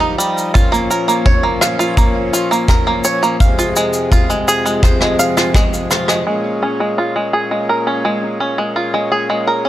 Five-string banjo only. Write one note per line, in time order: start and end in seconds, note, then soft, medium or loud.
0.00 0.17 D#4 medium
0.18 0.53 G3 medium
0.54 0.71 F4 medium
0.72 0.89 A#3 medium
0.91 1.07 A#4 medium
1.08 1.24 A#3 medium
1.26 1.43 C#5 medium
1.43 1.60 A#3 medium
1.61 1.78 F5 medium
1.79 1.96 F4 medium
1.97 2.31 A#3 medium
2.33 2.50 F4 medium
2.51 2.68 A#3 medium
2.69 2.85 A#4 medium
2.87 3.03 A#3 medium
3.05 3.22 C#5 medium
3.23 3.39 A#3 medium
3.41 3.57 F5 medium
3.59 3.75 F4 medium
3.76 4.10 G#3 medium
4.12 4.29 F4 medium
4.30 4.47 G#3 medium
4.48 4.64 G#4 medium
4.66 4.82 G#3 medium
4.84 5.00 C5 medium
5.02 5.17 G#3 medium
5.19 5.35 F5 medium
5.37 5.53 F4 medium
5.55 5.89 G#3 medium
5.91 6.08 F4 medium
6.09 6.26 G#3 medium
6.27 6.60 G#3 medium
6.63 6.79 C#4 medium
6.80 6.97 G#3 medium
6.98 7.14 F4 medium
7.16 7.32 G#3 medium
7.33 7.50 G#4 medium
7.51 7.67 G#3 medium
7.69 7.85 A#4 medium
7.87 8.03 C#4 medium
8.05 8.39 G#3 medium
8.40 8.57 C#4 medium
8.58 8.75 G#3 medium
8.76 8.92 F4 medium
8.94 9.10 G#3 medium
9.12 9.29 G#4 medium
9.30 9.46 G#3 medium
9.47 9.64 A#4 medium
9.65 9.69 C#4 medium